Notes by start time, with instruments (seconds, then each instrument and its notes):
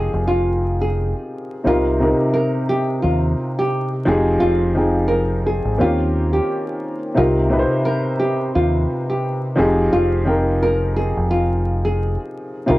Already playing: upright piano F3 C4 D#4 G4 G#4 A#4 G5, nylon-string guitar G#4
0.13 fingered electric bass F1
0.27 nylon-string guitar F4
0.81 nylon-string guitar G#4
1.64 fingered electric bass C2, upright piano C3 C4 D#4 G4 A#4, nylon-string guitar F4
1.99 upright piano C3 C4 D#4 G4 A#4
2.34 nylon-string guitar A#4
2.69 nylon-string guitar G4
3.02 fingered electric bass D#2, nylon-string guitar F4
3.59 nylon-string guitar G4
4.05 fingered electric bass F1, upright piano F3 C4 D#4 G4 G#4
4.40 fingered electric bass F1, nylon-string guitar F4
4.75 upright piano F3 C4 D#4 G#4 G5
5.08 nylon-string guitar A#4
5.46 nylon-string guitar G#4
5.65 fingered electric bass G#1
5.78 fingered electric bass D#2, upright piano D#3 A#3 C4 C#4 F4 G4, nylon-string guitar F4
6.33 nylon-string guitar G4
7.15 fingered electric bass C2, upright piano C3 C4 D#4 G4 A#4, nylon-string guitar F4
7.50 upright piano C3 C4 D#4 G4 B4
7.59 upright piano C5
7.85 nylon-string guitar A#4
8.19 nylon-string guitar G4
8.55 fingered electric bass D#2, nylon-string guitar F4
9.10 nylon-string guitar G4
9.56 fingered electric bass F1, upright piano F3 C4 D#4 G4 G#4
9.93 fingered electric bass F1, nylon-string guitar F4
10.25 upright piano F3 C4 D#4 A#4 G5
10.63 nylon-string guitar A#4
10.96 nylon-string guitar G#4
11.17 fingered electric bass F1
11.31 nylon-string guitar F4
11.85 nylon-string guitar G#4
12.66 fingered electric bass C2, upright piano C3 C4 D#4 G4 A#4, nylon-string guitar F4